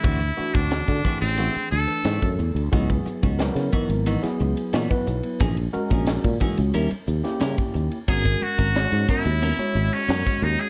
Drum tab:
RD |xx-xxx-xxx-xxx-x|xx-xxx-xxx-xxx-x|xx-xxx-xxx-xxx-x|xx-xxx-xxx-xxx-x|
HH |p-p-p-p-p-p-p-p-|p-p-p-p-p-p-p-p-|p-p-p-p-p-p-p-p-|p-p-p-p-p-p-p-p-|
SD |----oo------o---|----oo---o--o---|----o------oo---|----oo-----oo---|
BD |o--o-oo------o--|oo-o--o------o--|o--o-oo------o--|oo-o--o------o--|